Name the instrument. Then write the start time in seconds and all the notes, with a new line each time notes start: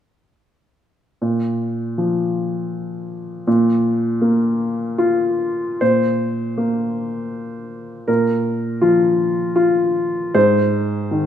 upright piano
1.22 A#2
1.98 F3
3.47 A#2
4.22 A#3
4.98 F4
5.81 A#2 C5
6.58 A#3
8.08 A#2 A#4
8.81 F3 F4
9.56 F4
10.35 G#2 C5
11.11 D#3